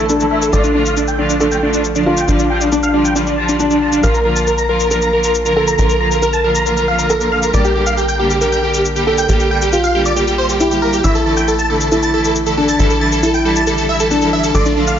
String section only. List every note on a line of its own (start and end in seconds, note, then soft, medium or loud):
0.20 0.28 D3 medium
0.20 0.28 E3 medium
0.20 0.28 A3 medium
0.20 0.28 E4 medium
0.31 0.46 D3 medium
0.31 0.46 E3 medium
0.31 0.46 A3 medium
0.31 0.46 E4 medium
0.53 0.68 D3 medium
0.53 0.68 F3 medium
0.53 0.68 A3 medium
0.53 0.68 F4 medium
0.75 0.90 D3 medium
0.75 0.90 F3 medium
0.75 0.90 A3 medium
0.75 0.90 F4 medium
1.18 1.34 D3 medium
1.18 1.34 F3 medium
1.18 1.34 A3 medium
1.18 1.34 F4 medium
1.40 1.48 D3 medium
1.40 1.48 F3 medium
1.40 1.48 A3 medium
1.40 1.48 F4 medium
1.51 1.59 D3 medium
1.51 1.59 F3 medium
1.51 1.59 A3 medium
1.51 1.59 F4 medium
1.62 1.78 D3 medium
1.62 1.78 F3 medium
1.62 1.78 A3 medium
1.62 1.78 F4 medium
1.95 2.03 D3 medium
1.95 2.03 F3 medium
1.95 2.03 A3 medium
1.95 2.03 F4 medium
2.06 2.22 D3 medium
2.06 2.21 F3 medium
2.06 2.22 A3 medium
2.06 2.21 F4 medium
2.28 2.43 D3 medium
2.28 2.43 F3 medium
2.28 2.43 G3 medium
2.28 2.43 F4 medium
2.50 2.65 D3 medium
2.50 2.65 F3 medium
2.50 2.65 G3 medium
2.50 2.65 F4 medium
2.93 3.09 D3 medium
2.93 3.09 F3 medium
2.93 3.09 G3 medium
2.93 3.09 F4 medium
3.16 3.23 D3 medium
3.16 3.23 F3 medium
3.16 3.24 G3 medium
3.16 3.23 F4 medium
3.27 3.34 D3 medium
3.27 3.34 F3 medium
3.27 3.34 G3 medium
3.27 3.34 F4 medium
3.38 3.53 D3 medium
3.38 3.53 F3 medium
3.38 3.53 G3 medium
3.38 3.53 F4 medium
3.71 3.78 D3 medium
3.71 3.78 F3 medium
3.71 3.78 G3 medium
3.71 3.78 F4 medium
3.81 3.97 D3 medium
3.81 3.97 F3 medium
3.81 3.97 G3 medium
3.81 3.97 F4 medium
4.04 4.19 D3 medium
4.04 4.19 F3 medium
4.04 4.19 A#3 medium
4.04 4.19 F4 medium
4.25 4.41 D3 medium
4.25 4.41 F3 medium
4.25 4.41 A#3 medium
4.25 4.41 F4 medium
4.69 4.84 D3 medium
4.69 4.84 F3 medium
4.69 4.84 A#3 medium
4.69 4.84 F4 medium
4.91 4.99 D3 medium
4.91 4.99 F3 medium
4.91 4.99 A#3 medium
4.91 4.99 F4 medium
5.02 5.09 D3 medium
5.02 5.09 F3 medium
5.02 5.10 A#3 medium
5.02 5.09 F4 medium
5.13 5.28 D3 medium
5.13 5.28 F3 medium
5.13 5.28 A#3 medium
5.13 5.28 F4 medium
5.45 5.53 D3 medium
5.45 5.53 F3 medium
5.45 5.53 A#3 medium
5.45 5.53 F4 medium
5.57 5.72 D3 medium
5.57 5.72 F3 medium
5.57 5.72 A#3 medium
5.57 5.72 F4 medium
5.79 5.94 D3 medium
5.79 5.94 F3 medium
5.79 5.94 A#3 medium
5.79 5.94 F4 medium
6.00 6.16 D3 medium
6.00 6.16 F3 medium
6.00 6.16 A#3 medium
6.00 6.16 F4 medium
6.44 6.59 D3 medium
6.44 6.59 F3 medium
6.44 6.60 A#3 medium
6.44 6.60 F4 medium
6.66 6.74 D3 medium
6.66 6.74 F3 medium
6.66 6.74 A#3 medium
6.66 6.74 F4 medium
6.77 6.85 D3 medium
6.77 6.85 F3 medium
6.77 6.85 A#3 medium
6.77 6.85 F4 medium
6.88 7.03 D3 medium
6.88 7.04 F3 medium
6.88 7.03 A#3 medium
6.88 7.04 F4 medium
7.21 7.29 D3 medium
7.21 7.29 F3 medium
7.21 7.29 A#3 medium
7.21 7.29 F4 medium
7.32 7.47 D3 medium
7.32 7.47 F3 medium
7.32 7.47 A#3 medium
7.32 7.47 F4 medium
7.54 7.69 D3 medium
7.54 7.69 G3 medium
7.54 7.69 A#3 medium
7.54 7.69 G4 medium
7.76 7.91 D3 medium
7.76 7.91 G3 medium
7.76 7.91 A#3 medium
7.76 7.91 G4 medium
8.20 8.35 D3 medium
8.20 8.35 G3 medium
8.20 8.35 A#3 medium
8.20 8.35 G4 medium
8.41 8.49 D3 medium
8.41 8.49 G3 medium
8.41 8.49 A#3 medium
8.41 8.49 G4 medium
8.53 8.60 D3 medium
8.53 8.60 G3 medium
8.53 8.60 A#3 medium
8.53 8.60 G4 medium
8.63 8.79 D3 medium
8.63 8.79 G3 medium
8.63 8.79 A#3 medium
8.63 8.79 G4 medium
8.96 9.04 D3 medium
8.96 9.04 G3 medium
8.96 9.04 A#3 medium
8.96 9.04 G4 medium
9.07 9.22 D3 medium
9.07 9.22 G3 medium
9.07 9.22 A#3 medium
9.07 9.22 G4 medium
9.29 9.44 D3 medium
9.29 9.44 G3 medium
9.29 9.44 A#3 medium
9.29 9.44 G4 medium
9.51 9.66 D3 medium
9.51 9.66 G3 medium
9.51 9.66 A#3 medium
9.51 9.66 G4 medium
9.95 10.10 D3 medium
9.95 10.10 G3 medium
9.95 10.10 A#3 medium
9.95 10.10 G4 medium
10.17 10.24 D3 medium
10.17 10.24 G3 medium
10.17 10.24 A#3 medium
10.17 10.24 G4 medium
10.28 10.35 D3 medium
10.28 10.35 G3 medium
10.28 10.35 A#3 medium
10.28 10.35 G4 medium
10.39 10.54 D3 medium
10.39 10.54 G3 medium
10.39 10.54 A#3 medium
10.39 10.54 G4 medium
10.71 10.79 D3 medium
10.71 10.79 G3 medium
10.71 10.79 A#3 medium
10.71 10.79 G4 medium
10.82 10.97 D3 medium
10.82 10.97 G3 medium
10.82 10.97 A#3 medium
10.82 10.97 G4 medium
11.04 11.19 D3 medium
11.04 11.19 E3 medium
11.04 11.19 A3 medium
11.04 11.19 E4 medium
11.26 11.41 D3 medium
11.26 11.41 E3 medium
11.26 11.41 A3 medium
11.26 11.41 E4 medium
11.70 11.85 D3 medium
11.70 11.85 E3 medium
11.70 11.85 A3 medium
11.70 11.85 E4 medium
11.91 11.99 D3 medium
11.91 11.99 E3 medium
11.91 11.99 A3 medium
11.91 11.99 E4 medium
12.02 12.10 D3 medium
12.02 12.10 E3 medium
12.02 12.10 A3 medium
12.02 12.10 E4 medium
12.13 12.29 D3 medium
12.13 12.29 E3 medium
12.13 12.29 A3 medium
12.13 12.29 E4 medium
12.46 12.54 D3 medium
12.46 12.54 E3 medium
12.46 12.54 A3 medium
12.46 12.54 E4 medium
12.57 12.73 D3 medium
12.57 12.73 E3 medium
12.57 12.73 A3 medium
12.57 12.73 E4 medium
12.79 12.94 D3 medium
12.79 12.94 E3 medium
12.79 12.94 G3 medium
12.79 12.94 E4 medium
13.01 13.17 D3 medium
13.01 13.16 E3 medium
13.01 13.16 G3 medium
13.01 13.16 E4 medium
13.45 13.60 D3 medium
13.45 13.60 E3 medium
13.45 13.60 G3 medium
13.45 13.60 E4 medium
13.67 13.74 D3 medium
13.67 13.74 E3 medium
13.67 13.74 G3 medium
13.67 13.74 E4 medium
13.78 13.85 D3 medium
13.78 13.85 E3 medium
13.78 13.85 G3 medium
13.78 13.85 E4 medium
13.88 14.04 D3 medium
13.88 14.04 E3 medium
13.88 14.04 G3 medium
13.88 14.04 E4 medium
14.21 14.29 D3 medium
14.21 14.29 E3 medium
14.21 14.29 G3 medium
14.21 14.29 E4 medium
14.32 14.48 D3 medium
14.32 14.48 E3 medium
14.32 14.48 G3 medium
14.32 14.48 E4 medium
14.54 14.70 D3 medium
14.54 14.70 F3 medium
14.54 14.70 A3 medium
14.54 14.70 F4 medium
14.76 14.92 D3 medium
14.76 14.92 F3 medium
14.76 14.92 A3 medium
14.76 14.92 F4 medium